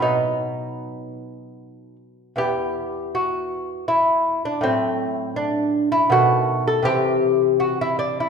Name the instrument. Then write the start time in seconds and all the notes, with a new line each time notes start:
lute
0.00 B2 F#3 B3 D#4
2.36 E2 E3 B3 G4
3.15 F#4
3.88 E4
4.45 D4
4.61 A2 F#3 A3 C4
5.36 D4
5.92 E4
6.10 B2 D#3 A3 F#4
6.67 A4
6.83 C3 E3 C4 G4
7.60 F#4
7.81 E4
7.99 D4
8.20 E4